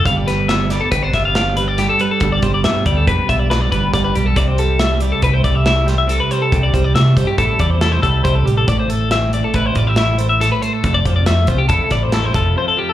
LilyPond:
<<
  \new Staff \with { instrumentName = "Clean electric guitar" } { \time 5/4 \key g \mixolydian \tempo 4 = 139 f''16 d''16 b'8 e''8 d''16 a'16 b'16 c''16 e''16 f''16 f''8 b'16 d''16 g'16 a'16 b'16 a'16~ | a'16 d''16 c''16 d''16 e''8 d''16 a'16 b'8 e''16 d''16 b'16 d''16 b'8 d''16 b'16 g'16 a'16 | d''16 c''16 a'8 e''8 d''16 a'16 b'16 c''16 d''16 e''16 e''8 c''16 e''16 a'16 b'16 c''16 a'16~ | a'16 d''16 c''16 d''16 e''8 c''16 g'16 a'8 d''16 c''16 a'16 c''16 a'8 c''16 a'16 g'16 a'16 |
d''16 c''16 a'8 e''8 d''16 a'16 b'16 c''16 d''16 e''16 e''8 c''16 e''16 a'16 b'16 c''16 a'16~ | a'16 d''16 c''16 d''16 e''8 c''16 g'16 a'8 d''16 c''16 a'16 c''16 a'8 c''16 a'16 g'16 a'16 | }
  \new Staff \with { instrumentName = "Clean electric guitar" } { \clef bass \time 5/4 \key g \mixolydian << { r4 b4 c'16 d'16 f'8 d'2 | r4 b4 d'8 f'8 d'2 | r4 a4 e'8 a'8 e'2 | r4 a4 e'8 a'8 e'2 |
r4 c'4 e'8 f'16 g'16 e'2 | r4 a4 e'8 a'8 e'2 | } \\ { <g, f>8 g4 g2 g8 g,8 g8 | g,8 g4 g2 g8 g,8 g8 | c8 g4 g2 g8 c8 g8 | c8 g4 g2 g8 c8 g8 |
a,8 a4 a2 a8 a,8 a8 | f,8 f4 f2 f8 f,8 f8 | } >> }
  \new Staff \with { instrumentName = "Fingered electric bass" } { \clef bass \time 5/4 \key g \mixolydian g,,2 g,,8 g,,2 r8 | g,,8 g,,8 g,8 d,8 f,,16 r16 b,,4 g,,8 g,,8 b,,8 | c,2 c,8 c,2 r8 | c,8 c,8 c8 g,8 a,,16 r16 e,4 c,8 c,8 a,,8 |
a,,2 a,,8 a,,2 r8 | f,,8 f,,8 f,8 c,8 e,,16 r16 a,,4 f,,8 r4 | }
  \new DrumStaff \with { instrumentName = "Drums" } \drummode { \time 5/4 <hh bd>8 <hh sn>8 <hh sn>8 <hh sn>8 <hh bd>8 <hh bd sn>8 <hh sn>8 hh8 <hh sn>8 hh8 | <hh bd>8 <hh bd>8 <hh sn>8 <hh bd>8 <hh bd>8 <hh bd>8 <hh sn>8 <hh bd>8 <hh bd sn>8 hh8 | <hh bd>8 hh8 <hh sn>8 hh8 <hh bd>8 <hh bd>8 <hh sn>8 <hh sn>8 hh8 hh8 | <hh bd>8 <hh bd>8 <hh sn>8 <hh bd>8 <hh bd>8 <hh bd>8 <hh sn>8 <hh bd>8 <hh bd>8 hh8 |
<hh bd>8 hh8 <hh sn>8 hh8 <hh bd>8 <hh bd>8 <hh sn>8 hh8 <hh sn>8 hh8 | <hh bd>8 <hh bd>8 <hh sn>8 <hh bd>8 <hh bd>8 <hh bd sn>8 <hh sn>8 <hh bd>8 r4 | }
>>